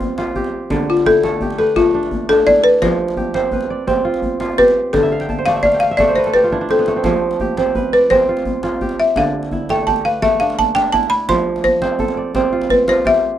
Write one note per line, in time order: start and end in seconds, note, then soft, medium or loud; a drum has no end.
0.00 0.76 F3 medium
0.00 0.25 A3 medium
0.00 1.46 C4 medium
0.00 0.18 F4 medium
0.00 0.35 G4 medium
0.00 0.54 B4 medium
0.00 0.32 C5 medium
0.00 0.59 D5 medium
0.00 djembe bass medium
0.10 djembe slap soft
0.18 1.12 F4 medium
0.18 djembe slap medium
0.27 djembe tone medium
0.35 1.41 G4 medium
0.35 djembe bass medium
0.44 djembe slap medium
0.70 2.87 D3 medium
0.70 djembe slap medium
0.70 djembe bass medium
0.79 djembe tone medium
0.90 1.07 F4 medium
0.97 djembe slap medium
1.05 2.46 E4 medium
1.05 1.55 A4 medium
1.05 djembe bass medium
1.23 1.76 A3 medium
1.23 2.56 A4 medium
1.23 djembe slap medium
1.32 djembe tone medium
1.41 2.83 G4 medium
1.41 djembe bass medium
1.50 djembe slap medium
1.59 1.75 A4 medium
1.59 2.82 B4 medium
1.76 3.76 A3 medium
1.76 2.09 F4 medium
1.76 djembe slap medium
1.76 djembe bass medium
1.85 djembe tone soft
1.94 2.29 D4 medium
1.94 djembe slap soft
2.03 djembe slap medium
2.11 djembe bass medium
2.21 djembe slap soft
2.29 3.97 D4 medium
2.29 2.45 A4 medium
2.29 djembe slap medium
2.38 djembe tone medium
2.46 4.03 E4 medium
2.46 2.65 D5 loud
2.46 djembe bass medium
2.56 djembe slap medium
2.64 2.82 B4 loud
2.82 4.98 F3 medium
2.82 3.66 C5 medium
2.82 djembe slap medium
2.82 djembe bass medium
3.08 djembe slap medium
3.17 4.58 G4 medium
3.17 djembe bass medium
3.34 3.87 C4 medium
3.34 4.54 C5 medium
3.34 djembe slap medium
3.42 djembe tone medium
3.52 4.76 B4 medium
3.52 djembe bass medium
3.61 djembe slap medium
3.70 4.81 D5 medium
3.87 5.67 C4 medium
3.87 djembe slap medium
3.87 djembe bass medium
3.96 djembe tone soft
4.05 4.40 F4 medium
4.05 djembe slap soft
4.14 djembe slap medium
4.22 djembe bass medium
4.31 djembe slap soft
4.40 5.09 F4 medium
4.40 djembe slap medium
4.50 djembe tone medium
4.58 6.00 G4 medium
4.58 4.94 B4 loud
4.58 djembe bass medium
4.68 djembe slap medium
4.93 7.10 D3 medium
4.93 5.09 A4 medium
4.93 djembe slap medium
4.93 djembe bass medium
5.03 5.56 E5 medium
5.03 djembe tone medium
5.12 5.62 F5 medium
5.20 5.74 G5 medium
5.20 djembe slap medium
5.29 6.16 A5 medium
5.29 djembe bass medium
5.37 6.08 C5 medium
5.37 djembe slap soft
5.46 5.99 A3 medium
5.46 5.99 D5 medium
5.46 5.62 F5 medium
5.46 djembe slap medium
5.55 5.89 E5 medium
5.55 djembe tone medium
5.63 5.80 D5 medium
5.63 5.82 F5 medium
5.63 djembe slap soft
5.63 djembe bass medium
5.72 6.67 G5 medium
5.72 djembe slap medium
5.80 5.97 F5 medium
5.80 6.58 F5 medium
5.80 djembe slap soft
5.91 6.50 E5 medium
5.97 6.87 A3 medium
5.97 6.16 D5 medium
5.97 7.11 D5 medium
5.97 djembe slap medium
5.97 djembe bass medium
6.07 6.85 C5 medium
6.07 djembe tone medium
6.16 6.76 B4 medium
6.16 6.34 C5 medium
6.24 7.58 A4 medium
6.24 djembe slap medium
6.33 7.40 G4 medium
6.33 6.70 B4 medium
6.33 djembe bass soft
6.44 7.95 F4 medium
6.51 6.61 D4 medium
6.51 7.11 E4 medium
6.51 djembe bass soft
6.61 8.29 D4 medium
6.69 6.96 C4 medium
6.69 7.03 A4 medium
6.69 djembe slap soft
6.79 7.03 B3 medium
6.86 8.87 A3 medium
6.86 djembe slap medium
6.97 7.58 C4 medium
7.04 9.22 F3 medium
7.04 djembe slap medium
7.04 djembe bass medium
7.13 djembe tone medium
7.31 djembe slap medium
7.40 8.81 G4 medium
7.40 djembe bass medium
7.57 8.10 C4 medium
7.57 8.77 C5 medium
7.57 djembe slap medium
7.66 djembe tone medium
7.75 8.98 B4 medium
7.75 djembe bass medium
7.93 8.11 B4 medium
7.93 9.04 D5 medium
8.10 9.91 C4 medium
8.10 8.43 C5 loud
8.10 djembe slap medium
8.10 djembe bass medium
8.19 djembe tone medium
8.28 8.63 F4 medium
8.28 djembe slap soft
8.37 djembe slap medium
8.45 djembe bass medium
8.54 djembe slap soft
8.63 9.59 F4 medium
8.63 djembe slap medium
8.72 djembe tone medium
8.81 9.87 G4 medium
8.81 djembe bass medium
8.89 djembe slap medium
9.00 9.07 E5 medium
9.16 11.34 D3 medium
9.16 9.50 F5 medium
9.16 djembe slap medium
9.16 djembe bass medium
9.24 djembe tone soft
9.43 djembe slap soft
9.51 10.93 E4 medium
9.51 djembe bass medium
9.69 10.22 A3 medium
9.69 11.02 A4 medium
9.69 9.88 G5 medium
9.69 djembe slap medium
9.78 djembe tone medium
9.87 11.29 G4 medium
9.87 10.05 A5 medium
9.87 djembe bass medium
9.96 djembe slap medium
10.05 11.28 B4 medium
10.05 10.23 F5 medium
10.22 12.22 A3 medium
10.22 10.39 E5 medium
10.22 djembe slap medium
10.22 djembe bass medium
10.32 djembe tone medium
10.40 10.75 D4 medium
10.40 10.58 F5 medium
10.40 djembe slap soft
10.50 djembe slap medium
10.59 10.76 A5 loud
10.59 djembe bass medium
10.68 djembe slap soft
10.75 12.43 D4 medium
10.75 10.93 G5 loud
10.75 djembe slap medium
10.85 djembe tone medium
10.93 12.50 E4 medium
10.93 11.09 A5 medium
10.93 djembe bass medium
11.03 djembe slap medium
11.10 11.27 B5 loud
11.29 13.38 F3 medium
11.29 11.65 C6 medium
11.29 djembe slap medium
11.29 djembe bass medium
11.38 djembe tone medium
11.56 djembe slap medium
11.64 12.48 C5 loud
11.64 djembe bass medium
11.82 12.35 C4 medium
11.82 13.00 C5 medium
11.82 djembe slap medium
11.99 13.31 A4 medium
11.99 djembe bass medium
12.08 djembe slap medium
12.17 13.28 D5 medium
12.35 13.38 C4 medium
12.35 djembe slap medium
12.35 djembe bass medium
12.52 12.88 F4 medium
12.52 djembe slap soft
12.61 djembe slap medium
12.70 12.87 B4 medium
12.70 djembe bass medium
12.79 djembe slap soft
12.88 13.38 F4 medium
12.88 13.07 C5 medium
12.88 djembe slap medium
12.96 djembe tone medium
13.05 13.38 G4 medium
13.05 13.38 E5 loud
13.05 djembe bass medium
13.14 djembe slap medium